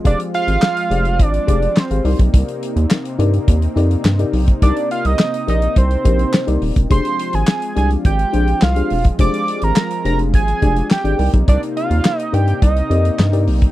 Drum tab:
HH |xxxx-xxxxxxx-xox|xxxx-xxxxxxx-xox|xxxx-xxxxxxx-xox|xxxx-xxxxxxx-xox|
CP |----x-------x---|----x-------x---|----x-------x---|----x-------x---|
SD |----o-------o---|----o-------o---|----o-------o---|----o-------o---|
BD |o-------o-o----o|o-------o------o|o-------o-o----o|o-------o------o|

HH |xxxx-xxxxxxx-xox|xxxx-xxxxxxx-xox|
CP |----x-------x---|----x-------x---|
SD |----o-------o---|----o-------o---|
BD |o-------o-o----o|o-------o------o|